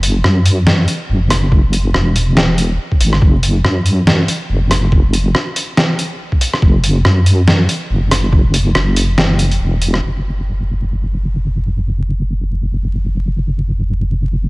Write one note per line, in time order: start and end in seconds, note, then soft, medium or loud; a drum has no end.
0.00 0.23 F#1 medium
0.00 closed hi-hat medium
0.24 0.87 F#2 loud
0.24 cross-stick medium
0.46 closed hi-hat medium
0.67 snare loud
0.88 closed hi-hat medium
1.09 1.93 F#1 medium
1.30 cross-stick medium
1.30 closed hi-hat medium
1.52 kick loud
1.73 closed hi-hat medium
1.94 2.78 E1 loud
1.94 cross-stick medium
2.16 closed hi-hat medium
2.37 snare loud
2.58 closed hi-hat medium
2.92 kick medium
3.01 3.21 G#1 medium
3.01 closed hi-hat medium
3.13 cross-stick soft
3.22 3.63 F#1 medium
3.22 kick loud
3.43 closed hi-hat medium
3.64 4.27 F#2 loud
3.64 cross-stick medium
3.86 closed hi-hat medium
4.07 snare loud
4.28 closed hi-hat medium
4.50 5.33 F#1 medium
4.71 cross-stick medium
4.71 closed hi-hat medium
4.92 kick loud
5.13 closed hi-hat medium
5.35 cross-stick medium
5.56 closed hi-hat medium
5.77 snare loud
5.99 closed hi-hat medium
6.32 kick medium
6.41 closed hi-hat medium
6.54 cross-stick medium
6.62 7.03 F#1 medium
6.62 kick loud
6.84 closed hi-hat medium
7.05 7.67 F#2 loud
7.05 cross-stick medium
7.26 closed hi-hat medium
7.47 snare loud
7.69 closed hi-hat medium
7.90 8.74 F#1 loud
8.11 cross-stick medium
8.11 closed hi-hat medium
8.33 kick loud
8.54 closed hi-hat medium
8.75 9.59 F#1 loud
8.75 cross-stick medium
8.96 closed hi-hat medium
9.18 snare loud
9.39 closed hi-hat medium
9.51 closed hi-hat soft
9.60 10.01 E1 loud
9.82 closed hi-hat medium
9.94 cross-stick medium
10.03 14.49 F#1 medium